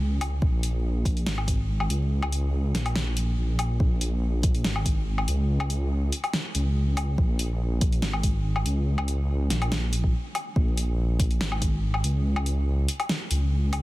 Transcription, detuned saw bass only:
Already playing: C#2
0.42 A#1
1.26 G#1
1.90 C#2
2.74 A#1
3.37 A#1
3.80 A#1
4.64 G#1
5.28 C#2
6.55 C#2
7.18 A#1
8.03 G#1
8.66 C#2
9.51 A#1
10.56 A#1
11.41 G#1
12.04 C#2
13.31 C#2

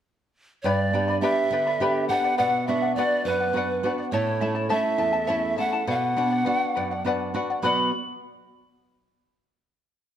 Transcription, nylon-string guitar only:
0.64 G2
0.93 B3 D4 G4
1.21 B3 D4 G4
1.51 D3
1.80 B3 D4 G4
2.09 B3 D4 G4
2.40 B2
2.68 B3 D4 F#4
2.96 B3 D4 F#4
3.25 F#2
3.53 B3 D4 F#4
3.83 B3 D4 F#4
4.12 A2
4.41 A3 C#4 E4
4.70 A3 C#4 E4
4.98 E2
5.29 A3 C#4 E4
5.58 A3 C#4 E4
5.87 B2
6.17 B3 D4 F#4
6.46 B3 D4 F#4
6.77 F#2
7.05 B3 D4 F#4
7.34 B3 D4 F#4
7.62 B2 F#3 B3 F#4 D5 F#5

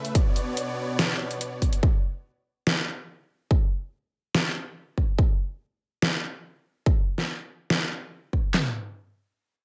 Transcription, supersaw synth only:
Already playing: C#3 A3 B4 E5
0.15 B2 B3 C#5 D5

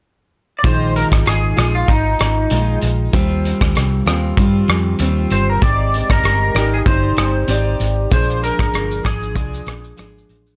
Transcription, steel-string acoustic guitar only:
0.63 A#2 D#3 G#3 D#4 F4
1.57 G#3 D#4 F4
1.88 D#3 G#3 D#4 F4
2.50 D#3 G#3 D#4 F4
3.12 D#3 G3 C4 F4
4.06 G3 C4 F4
4.37 D#3 G3 C4 F4
5.00 D#3 G3 C4 F4
5.62 G#3 C4 D#4 G4 D5
6.55 D#4 G4 D5
6.86 C4 D#4 G4 D5
7.48 C4 D#4 G4 D5
8.11 A#2 F3 G#3 D4 G#4
9.03 G#3 D4 G#4
9.34 F3 G#3 D4 G#4
9.97 F3 G#3 D4 G#4

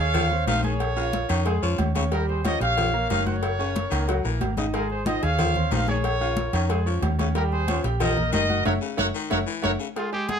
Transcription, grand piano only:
Already playing: G#4
0.00 G#5 G#6
0.31 C4 C5 C6
0.64 G#4 G#5 G#6
0.97 F4 F5 F6
1.29 C#4 C#5 C#6
1.46 G#3 G#4 G#5
1.62 C#4 C#5 C#6
1.96 C#4 C#5 C#6
2.12 G3 G4 G5
2.45 C#4 C#5 C#6
2.60 G4 G5 G6
2.93 A#3 A#4 A#5
3.26 F#4 F#5 F#6
3.59 C#4 C#5 C#6
3.92 A#3 A#4 A#5
4.09 F#3 F#4 F#5
4.25 A#3 A#4 A#5
4.58 D#4 D#5 D#6
4.74 G#3 G#4 G#5
5.07 D#4 D#5 D#6
5.22 G#4 G#5 G#6
5.56 C4 C5 C6
5.88 G#4 G#5 G#6
6.21 F4 F5 F6
6.54 C#4 C#5 C#6
6.69 G#3 G#4 G#5
6.86 C#4 C#5 C#6
7.19 C#4 C#5 C#6
7.35 G3 G4 G5
7.69 C#4 C#5 C#6
7.84 G4 G5 G6
8.17 A#3 A#4 A#5
8.49 F#4 F#5 F#6
8.66 C#5 E5 F#5
8.97 C#5 E5 F#5
9.30 C#5 E5 F#5
9.62 C#5 E5 F#5
9.96 G#3 G#4 G#5
10.12 G#3 G#4 G#5

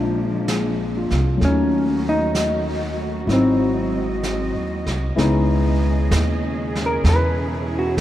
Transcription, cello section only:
Already playing: F3 G#3 A#3 D4
1.41 D#3 F#3 A3 C#4 F#4
3.27 F#3 G#3 C4 D#5
5.17 B2 C#3 C#4 G#4 D#5
7.03 E4

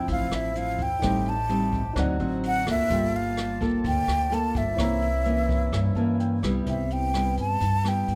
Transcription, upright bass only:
0.08 A1
0.32 A1
0.79 E2
1.02 A1
1.96 D2
2.20 A1
2.67 D2
2.90 G1
3.85 D2
4.08 D2
4.55 G1
4.78 C2
5.73 G2
5.95 G2
6.43 C2
6.67 C2
7.37 G2
7.61 G2
8.08 G2

